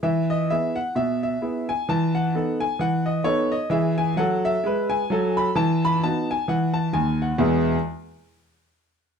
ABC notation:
X:1
M:4/4
L:1/8
Q:"Swing" 1/4=130
K:E
V:1 name="Grand piano"
e d e f e e2 g | a f2 g f d c d | e g f e2 g2 b | a b a g f a g f |
[E,,B,,G,B,EGe] z6 z |]
V:2 name="Grand piano"
E,2 [B,EG]2 B,,2 [B,EG]2 | E,2 [B,DA]2 E,2 [B,DA]2 | [E,G]2 [F,A]2 [G,B]2 [F,A]2 | E,2 [B,DF]2 E,2 [D,,D,]2 |
z8 |]